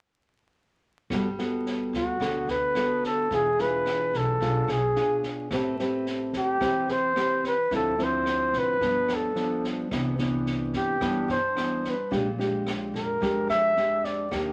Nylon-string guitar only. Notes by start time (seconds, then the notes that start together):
1.12 G3 B3 F#4 A4
1.39 B3 F#4 A4
2.20 D3 B3 F#4 A4
2.76 B3 F#4 A4
3.32 E3 D4 F4 G#4
3.58 D4 F4 G#4
4.41 B2 D4 F4 G#4
4.96 D4 F4 G#4
5.52 A3 C4 G4 B4
5.80 C4 G4 B4
6.60 E3 C4 G4 B4
7.16 C4 G4 B4
7.71 D3 F3 C4 E4
7.98 F3 C4 E4
8.81 G2 F3 B3 D4
9.35 F3 B3 D4
9.92 C3 E3 B3 D4
10.19 E3 B3 D4
11.00 G2 E3 B3 D4
11.55 E3 B3 D4
12.11 A#2 G#3 D4 G4
12.38 G#3 D4 G4
13.20 F2 G#3 D4 G4
13.76 G#3 D4 G4
14.31 D#3 A#3 D4 G4